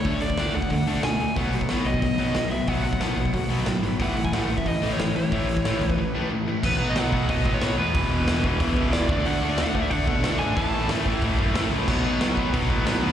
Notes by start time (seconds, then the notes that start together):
Already playing: C#5
0.04 D2 D3 A3 D4, kick, open hi-hat
0.21 D2 D3 A3 D5, open hi-hat
0.30 kick
0.37 D2 D3 A3 D4, snare, open hi-hat
0.54 D2 D3 A3 F#5, open hi-hat
0.62 kick
0.70 D2 D3 A3, kick, open hi-hat
0.87 D2 D3 A3 D4, open hi-hat
1.03 B2 D3 A3 G#5, snare, open hi-hat
1.19 D2 D3 A3, open hi-hat
1.36 B1 B2 F#3 B3 F#5, kick, open hi-hat
1.53 B2 F#3, open hi-hat
1.61 kick
1.68 B1 B2 F#3 B3, snare, open hi-hat
1.85 B1 B2 F#3 D#5, open hi-hat
1.94 kick
2.02 B1 B2 F#3 D#5, kick, open hi-hat
2.18 B1 B2 F#3 B3, open hi-hat
2.35 B1 B2 F#3, snare, open hi-hat
2.51 B1 B2 F#3 B3 E5, open hi-hat
2.67 B1 B2 F#3 B3 F#5, kick, open hi-hat
2.84 B1 B2 F#3 F#5, open hi-hat
2.93 kick
3.00 B1 B2 F#3 B3, snare, open hi-hat
3.16 B1 B2 F#3, open hi-hat
3.25 kick
3.33 B1 B2 F#3, kick, open hi-hat
3.49 B1 B2 F#3 B3, open hi-hat
3.65 A2 B2 F#3, snare, open hi-hat
3.82 G#1 B2 F#3 B3, open hi-hat
3.99 A1 A2 E3 A3 F#5, kick, open hi-hat
4.16 A2 E3, open hi-hat
4.25 G#5, kick
4.32 A1 A2 E3 A3 F#5, snare, open hi-hat
4.49 A1 A2 E3, open hi-hat
4.58 E5, kick
4.66 A1 A2 E3 D#5, kick, open hi-hat
4.81 A1 A2 E3 A3, open hi-hat
4.92 C#5
4.99 A1 A2 E3, snare, open hi-hat
5.14 A1 A2 E3 A3 C#5, open hi-hat
5.32 A1 A2 E3 A3, kick, open hi-hat
5.48 A1 A2 E3, open hi-hat
5.57 kick
5.65 A1 A2 E3 A3, snare, open hi-hat
5.81 C#2 A2 E3, open hi-hat
5.90 B4, kick
5.98 A2 E3
6.15 A2 E3 A3
6.31 A2 E3
6.46 A2 E3 A3
6.63 B1 B2 F#3 B3 B4, kick, crash
6.79 B2 F#3 B3
6.90 D#5
6.96 B1 B2 F#3 B3 F#5, snare, open hi-hat
7.12 B2 F#3 B3 F#5, kick
7.29 B2 F#3 B3 D#5, kick, open hi-hat
7.45 A2 B2 F#3 B3, kick
7.54 C#5
7.61 B1 B2 F#3 B3, snare, open hi-hat
7.78 E2 B2 F#3 B3 B4
7.95 E1 E2 B2 E3, kick, open hi-hat
8.12 E2 B2 E3
8.28 E1 E2 B2 E3, snare, open hi-hat
8.43 E2 B2 E3, kick
8.60 E2 B2 E3, kick, open hi-hat
8.76 C#2 E2 B2 E3, kick
8.93 E1 E2 B2 E3 D5, snare, open hi-hat
9.09 D2 D3 A3 D4, kick
9.18 D5
9.25 D2 D3 A3 D4 F#5, open hi-hat
9.42 D3 A3 D4
9.50 D5
9.57 D2 D3 A3 D4 F#5, snare, open hi-hat
9.75 D3 A3 D4, kick
9.82 E5
9.90 D3 A3 D4 F#5, kick, open hi-hat
10.07 B2 D3 A3 D4, kick
10.24 D2 D3 A3 D4, snare, open hi-hat
10.39 G#1 D3 A3 D4 G#5
10.56 A1 A2 E3 A3 A5, kick, open hi-hat
10.74 A2 E3 A3
10.89 A1 A2 E3 A3, snare, open hi-hat
11.06 A2 E3 A3, kick
11.22 A2 E3 A3, kick, open hi-hat
11.38 F#2 A2 E3 A3, kick
11.54 A1 A2 E3 A3, snare, open hi-hat
11.70 C#2 A2 E3 A3
11.88 B1 B2 F#3 B3, kick, crash
12.05 B2 F#3 B3
12.20 B1 B2 F#3 B3, snare, open hi-hat
12.36 B2 F#3 B3, kick
12.53 B2 F#3 B3, kick, open hi-hat
12.69 A2 B2 F#3 B3, kick
12.85 B1 B2 F#3 B3, snare, open hi-hat
13.02 D#2 B2 F#3 B3